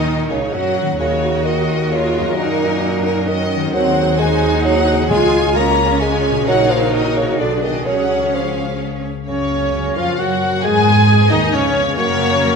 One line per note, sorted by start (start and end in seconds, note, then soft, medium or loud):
0.00 0.28 D#2 medium
0.00 0.92 A#2 medium
0.00 0.30 D#3 medium
0.00 0.32 D#3 medium
0.00 0.84 A#3 soft
0.00 2.34 C#4 soft
0.00 0.29 D#4 medium
0.00 0.51 D#4 medium
0.00 0.93 F#4 soft
0.00 0.28 D#5 medium
0.30 0.53 C#2 medium
0.30 0.55 C#3 medium
0.30 0.53 C#3 medium
0.30 0.38 C#4 soft
0.30 0.53 C#5 medium
0.52 0.98 F#2 medium
0.52 0.99 F#3 medium
0.52 0.99 C#4 medium
0.52 0.98 F#4 medium
0.52 0.99 F#5 medium
0.81 2.29 D#3 medium
0.85 2.21 A#3 soft
0.90 2.26 D#4 soft
0.95 2.31 F#4 medium
0.99 2.33 D#2 medium
0.99 1.44 C#3 medium
0.99 1.89 F#4 medium
0.99 3.70 F#4 medium
0.99 3.70 A#4 medium
0.99 1.44 C#5 medium
0.99 3.70 D#5 medium
1.45 1.93 D#3 medium
1.45 1.91 D#5 medium
1.90 2.38 C#3 medium
1.90 2.36 F4 medium
1.90 2.36 C#5 medium
2.18 3.67 F#2 medium
2.23 3.69 A#3 soft
2.27 3.64 D#4 medium
2.32 5.09 F#4 soft
2.37 3.74 F#2 medium
2.37 3.05 A#2 medium
2.37 3.27 D#4 medium
2.37 3.04 A#4 medium
3.05 3.30 A#2 medium
3.05 3.28 A#4 medium
3.28 3.76 D#3 medium
3.28 3.74 C#4 medium
3.28 3.73 D#5 medium
3.56 5.02 D#3 medium
3.60 5.05 C4 medium
3.65 5.07 D#4 medium
3.69 5.04 G#4 medium
3.74 5.07 D#2 medium
3.74 4.19 F#3 loud
3.74 4.18 C4 medium
3.74 5.06 F#4 medium
3.74 6.43 G#4 medium
3.74 5.06 C5 medium
3.74 4.18 F#5 medium
4.19 4.64 G#3 medium
4.19 5.08 D#4 medium
4.19 4.65 G#5 medium
4.65 4.97 F#3 loud
4.65 5.09 F#5 medium
4.92 6.40 C#3 medium
4.96 6.32 C#4 medium
5.01 6.44 F4 medium
5.05 6.47 G#4 medium
5.10 6.47 C#2 medium
5.10 5.75 C#3 medium
5.10 5.58 G#3 loud
5.10 6.43 F4 medium
5.10 5.55 F4 medium
5.10 7.35 C#5 medium
5.10 5.55 G#5 medium
5.56 6.01 A#3 medium
5.56 6.45 C#4 medium
5.56 6.02 A#5 medium
6.01 6.46 G#3 loud
6.01 6.47 G#5 medium
6.29 7.32 A#2 medium
6.34 7.35 C#4 medium
6.38 7.29 F#4 medium
6.43 7.39 A#4 medium
6.47 7.38 A#1 medium
6.47 6.72 F#3 loud
6.47 7.40 D#4 medium
6.47 7.83 F#4 medium
6.47 7.36 A#4 medium
6.47 6.70 F#5 medium
6.70 6.95 F3 medium
6.70 6.94 F5 medium
6.93 7.16 D#3 medium
6.93 7.16 D#5 medium
7.16 7.39 C#3 medium
7.16 7.40 C#5 medium
7.22 7.80 B2 medium
7.26 7.82 D4 soft
7.31 7.85 F#4 soft
7.35 7.77 G#4 soft
7.39 7.86 B1 medium
7.39 7.62 D3 medium
7.39 7.87 D4 medium
7.39 9.04 G#4 medium
7.39 7.84 D5 medium
7.39 7.63 D5 medium
7.63 7.88 D#3 medium
7.63 7.87 D#5 medium
7.69 9.21 C#3 medium
7.74 9.61 C#4 medium
7.78 9.26 G#4 soft
7.86 9.06 C#2 medium
7.86 8.35 F#3 loud
7.86 9.03 C#4 medium
7.86 9.04 C#4 medium
7.86 9.04 C#5 medium
7.86 8.34 F#5 medium
8.34 8.81 F3 medium
8.34 8.82 F5 medium
9.27 9.92 C#2 medium
9.27 10.66 F#2 soft
9.27 9.98 C#3 medium
9.27 9.93 C#3 medium
9.27 9.92 C#4 medium
9.27 9.93 C#4 medium
9.27 9.98 C#4 medium
9.27 9.92 C#5 medium
9.27 9.93 C#5 medium
9.39 10.51 C#3 soft
9.51 10.41 A#3 soft
9.62 10.96 C#4 soft
9.74 10.29 F#4 soft
9.85 10.18 A#4 soft
9.96 10.19 F2 medium
9.96 10.19 F3 medium
9.96 10.21 F3 medium
9.96 10.19 F4 medium
9.96 10.18 F4 medium
9.96 10.19 F4 medium
9.96 11.29 C#5 soft
9.96 10.19 F5 medium
9.96 10.21 F5 medium
10.08 10.66 F#5 medium
10.19 10.63 F#2 medium
10.19 10.63 F#3 medium
10.19 10.63 F#4 medium
10.19 10.66 A#4 soft
10.19 10.63 F#5 medium
10.19 10.64 F#5 medium
10.19 10.63 F#5 medium
10.30 10.66 F#4 soft
10.42 10.66 A#3 soft
10.52 10.66 C#3 soft
10.62 11.99 F2 medium
10.62 11.29 G#2 medium
10.62 11.31 G#3 medium
10.62 11.30 G#3 medium
10.62 11.31 G#4 medium
10.62 11.30 G#4 medium
10.62 11.31 G#4 medium
10.62 11.30 G#5 loud
10.62 11.31 G#5 medium
10.62 11.30 G#5 medium
10.75 11.85 F3 soft
10.86 11.74 B3 soft
10.98 12.29 C#4 medium
11.09 11.63 G#4 medium
11.20 11.52 B4 medium
11.30 11.54 D#2 medium
11.30 11.53 D#3 medium
11.30 11.42 D#3 medium
11.30 11.40 D#4 medium
11.30 11.53 D#4 medium
11.30 11.39 D#4 medium
11.30 12.56 C#5 medium
11.30 11.53 D#5 medium
11.30 11.41 D#5 medium
11.30 11.37 D#5 medium
11.42 11.99 G#5 medium
11.53 11.98 C#2 medium
11.53 11.97 C#3 medium
11.53 11.96 C#3 medium
11.53 11.97 C#3 medium
11.53 11.97 C#4 medium
11.53 11.96 C#4 medium
11.53 11.97 C#4 medium
11.53 11.99 B4 medium
11.53 11.96 C#5 medium
11.64 11.99 G#4 medium
11.75 11.99 B3 soft
11.86 11.99 F3 medium
11.97 12.39 F#2 medium
11.97 12.56 F#2 medium
11.97 12.56 C#3 medium
11.97 12.56 A#3 medium
11.97 12.56 C#4 medium
11.97 12.56 F#4 medium
11.97 12.56 A#4 medium
11.97 12.56 C#5 medium
11.97 12.56 C#5 loud
12.08 12.56 C#3 medium
12.19 12.56 A#3 medium
12.30 12.56 C#4 medium
12.41 12.56 F2 medium
12.41 12.56 F#4 medium